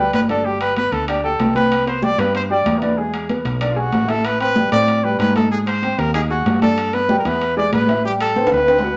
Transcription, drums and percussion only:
0.13 high conga medium
0.13 high timbale medium
0.13 low timbale medium
0.29 high conga medium
0.29 high timbale medium
0.46 high conga soft
0.61 high conga soft
0.61 high timbale medium
0.77 high conga medium
0.77 high timbale medium
0.93 high timbale medium
1.08 high conga soft
1.08 high timbale loud
1.24 high conga soft
1.40 high conga medium
1.40 high timbale medium
1.40 low timbale medium
1.55 high conga medium
1.55 high timbale medium
1.71 high conga soft
1.71 high timbale medium
1.87 high conga soft
1.87 high timbale medium
2.03 high conga medium
2.19 high timbale medium
2.34 high conga soft
2.34 high timbale medium
2.50 high conga soft
2.66 high conga medium
2.66 high timbale medium
2.66 low timbale medium
2.82 high conga medium
2.82 high timbale medium
2.97 high conga soft
3.14 high conga soft
3.14 high timbale medium
3.29 high conga medium
3.29 high timbale medium
3.46 high timbale medium
3.61 high conga soft
3.61 high timbale loud
3.77 high conga soft
3.92 high conga medium
3.92 high timbale medium
3.92 low timbale medium
4.08 high conga medium
4.08 high timbale medium
4.24 high conga soft
4.24 high timbale loud
4.40 high conga soft
4.40 high timbale medium
4.56 high conga medium
4.72 high timbale medium
4.87 high conga soft
4.87 high timbale medium
5.04 high conga soft
5.20 high conga medium
5.20 high timbale medium
5.36 high conga medium
5.36 high timbale medium
5.51 high conga soft
5.67 high conga soft
5.67 high timbale medium
5.83 high conga medium
5.83 high timbale medium
5.99 high timbale medium
6.14 high conga soft
6.14 high timbale loud
6.31 high conga soft
6.46 high conga medium
6.46 high timbale medium
6.46 low timbale medium
6.62 high conga medium
6.62 high timbale medium
6.78 high conga soft
6.78 high timbale loud
6.93 high conga soft
6.93 high timbale medium
7.09 high conga medium
7.25 high timbale medium
7.41 high conga soft
7.41 high timbale medium
7.57 high conga soft
7.72 high conga medium
7.72 high timbale medium
7.72 low timbale medium
7.88 high conga medium
7.88 high timbale medium
8.05 high conga soft
8.21 high conga soft
8.21 high timbale loud
8.36 high conga medium
8.36 high timbale medium
8.47 high timbale medium
8.57 high timbale medium
8.68 high conga soft
8.68 high timbale medium
8.79 low timbale medium
8.84 high conga soft

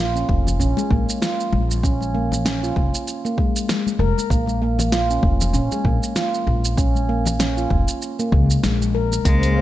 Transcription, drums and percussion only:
0.16 shaker soft
0.29 kick loud
0.29 muted conga medium
0.47 low conga medium
0.47 shaker medium
0.61 shaker soft
0.77 muted conga medium
0.77 high conga soft
0.77 shaker soft
0.91 kick loud
1.09 shaker medium
1.22 snare loud
1.22 shaker medium
1.40 shaker soft
1.53 muted conga medium
1.53 high conga medium
1.71 shaker medium
1.83 kick loud
1.83 shaker medium
2.01 high conga medium
2.01 shaker soft
2.15 high conga medium
2.32 muted conga medium
2.32 low conga medium
2.32 shaker medium
2.46 snare loud
2.46 shaker medium
2.64 shaker soft
2.76 kick loud
2.76 muted conga medium
2.95 shaker medium
3.08 shaker medium
3.26 shaker soft
3.38 kick loud
3.38 high conga soft
3.56 shaker medium
3.69 snare loud
3.69 shaker medium
3.87 high conga medium
3.87 shaker soft
4.18 muted conga soft
4.18 shaker medium
4.30 kick loud
4.30 shaker soft
4.47 high conga medium
4.47 shaker soft
4.79 muted conga soft
4.79 low conga medium
4.79 shaker medium
4.92 snare medium
4.92 shaker medium
5.10 shaker soft
5.23 kick loud
5.23 muted conga medium
5.41 low conga medium
5.41 shaker medium
5.54 shaker medium
5.72 muted conga medium
5.72 high conga soft
5.72 shaker soft
5.85 kick loud
6.03 shaker medium
6.16 snare loud
6.16 shaker medium
6.34 shaker soft
6.47 muted conga medium
6.47 high conga medium
6.65 shaker medium
6.78 kick loud
6.78 shaker medium
6.95 high conga medium
6.95 shaker soft
7.09 high conga medium
7.25 muted conga soft
7.25 low conga medium
7.25 shaker medium
7.40 snare medium
7.40 shaker medium
7.58 shaker soft
7.70 kick loud
7.70 muted conga medium
7.88 shaker medium
8.02 shaker medium
8.19 shaker soft
8.32 kick loud
8.50 shaker medium
8.64 snare loud
8.64 shaker medium
8.82 high conga medium
8.82 shaker soft
9.12 muted conga soft
9.12 high conga medium
9.12 shaker medium
9.25 kick loud
9.25 open hi-hat medium
9.25 shaker soft
9.43 open hi-hat soft
9.43 high conga medium
9.43 shaker soft

